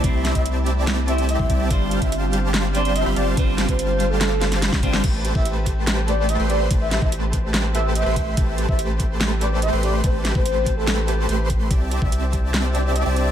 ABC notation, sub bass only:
X:1
M:4/4
L:1/16
Q:1/4=144
K:Am
V:1 name="Sub bass" clef=bass
C,,3 C,,8- C,,2 C,, C,,2 | G,,,3 G,,,8- G,,,2 G,,, G,,,2 | G,,,3 G,,,8- G,,,2 G,,, G,,,2 | A,,,3 A,,,8- A,,,2 A,,,3 |
A,,,3 A,,,8- A,,,2 A,,,3 | A,,,3 A,,,8- A,,,2 A,,,3 | A,,,3 A,,,8- A,,, A,,,4 | C,,3 C,,8- C,,2 C,,3 |]